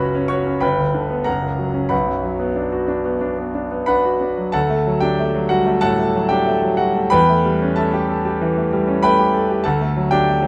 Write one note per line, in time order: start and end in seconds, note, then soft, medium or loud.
0.00 0.59 F#1 medium
0.00 0.65 C#2 medium
0.00 0.65 C#3 medium
0.00 0.15 C#4 soft
0.00 0.24 F#4 medium
0.00 0.65 A#4 medium
0.00 0.27 B4 medium
0.00 0.65 F#5 medium
0.00 0.64 A#5 medium
0.00 0.30 B5 medium
0.15 0.40 C#4 medium
0.28 0.56 F#4 medium
0.28 0.60 C#5 medium
0.28 0.61 C#6 medium
0.47 0.62 C#4 soft
0.60 1.25 G1 medium
0.60 1.22 B4 medium
0.60 1.22 G5 medium
0.60 1.26 B5 medium
0.78 1.04 D2 soft
0.94 1.20 D3 soft
1.10 1.27 B3 soft
1.24 1.90 F#1 medium
1.24 1.87 A#4 soft
1.24 1.87 F#5 medium
1.24 1.91 A#5 medium
1.42 1.69 C#2 soft
1.58 1.85 F#3 soft
1.74 1.91 C#4 soft
1.89 4.50 B1 medium
1.89 3.86 B4 soft
1.89 3.86 F#5 soft
1.89 3.85 B5 medium
2.07 2.33 F#2 soft
2.23 2.50 F#3 soft
2.39 2.66 B3 soft
2.56 2.83 D4 soft
2.72 2.99 F#4 soft
2.88 3.15 D4 soft
3.05 3.32 B3 soft
3.21 3.48 D4 soft
3.38 3.65 B3 soft
3.55 3.82 D4 soft
3.72 3.98 B3 soft
3.86 4.15 D4 soft
3.86 4.50 B4 medium
3.86 4.50 F#5 medium
3.86 4.53 B5 medium
4.05 4.32 F#4 soft
4.21 4.48 D4 soft
4.38 4.54 F#3 soft
4.52 5.79 D2 medium
4.52 4.99 A4 medium
4.52 4.99 F#5 medium
4.52 5.02 A5 medium
4.69 4.96 A3 medium
4.87 5.12 F#3 medium
5.00 5.28 D4 medium
5.00 5.47 G4 medium
5.00 5.50 G5 medium
5.19 5.45 A3 medium
5.35 5.60 F#3 medium
5.49 5.67 G3 soft
5.49 5.80 F#4 medium
5.49 5.80 F#5 medium
5.66 5.92 A3 soft
5.81 6.08 A2 medium
5.81 6.27 A4 medium
5.81 6.27 F#5 medium
5.81 6.30 A5 medium
5.99 6.24 A3 soft
6.15 6.41 F#3 medium
6.29 6.56 D4 soft
6.29 6.76 G4 medium
6.29 6.78 G5 medium
6.47 6.73 A3 medium
6.63 6.90 F#3 soft
6.77 6.96 G3 soft
6.77 7.09 F#4 soft
6.77 7.11 F#5 medium
6.95 7.12 A3 soft
7.10 8.35 E2 medium
7.10 7.72 B4 medium
7.10 7.72 G5 medium
7.10 7.75 B5 loud
7.29 7.54 A3 medium
7.45 7.70 G3 medium
7.62 7.86 C#4 medium
7.76 8.02 A3 medium
7.76 8.08 A4 soft
7.76 8.67 E5 soft
7.76 8.70 A5 medium
7.94 8.18 G4 medium
8.09 8.24 A4 soft
8.25 8.50 G4 medium
8.41 8.65 E3 medium
8.57 8.81 A3 soft
8.73 8.97 G3 medium
8.87 9.12 C#4 medium
9.03 9.28 A3 medium
9.03 9.62 B4 medium
9.03 9.62 G5 medium
9.03 9.65 B5 medium
9.19 9.43 G4 medium
9.34 9.49 A4 soft
9.50 9.65 G4 medium
9.64 10.47 D2 medium
9.64 10.09 A4 medium
9.64 10.09 F#5 soft
9.64 10.12 A5 medium
9.81 10.06 A3 medium
9.97 10.22 F#3 medium
10.11 10.37 D4 medium
10.11 10.47 G4 medium
10.11 10.47 G5 medium
10.28 10.47 A3 medium
10.42 10.47 F#3 medium